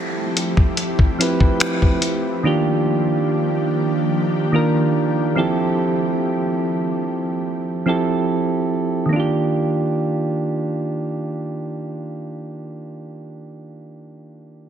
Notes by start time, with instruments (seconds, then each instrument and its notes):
Already playing: synth keys F3 C4 E4 G4 A4, ambient pad F3 A3 C4 E4 G4, downlifter
0.37 closed hi-hat
0.57 kick
0.77 closed hi-hat
0.99 kick
1.19 synth keys F3 C4 E4 G4 B4, closed hi-hat
1.40 kick
1.60 finger snap, closed hi-hat
1.82 kick
2.02 closed hi-hat
2.43 synth keys D#3 A#3 D4 F4 G4, ambient pad D#3 A#3 D4 G4
4.52 synth keys D#3 A#3 D4 F4 A#4
5.36 synth keys F3 C4 E4 G4 A4
7.86 synth keys F3 C4 E4 G4 A4
9.06 synth keys D#3 A#3
9.13 synth keys D4 F4
9.20 synth keys G4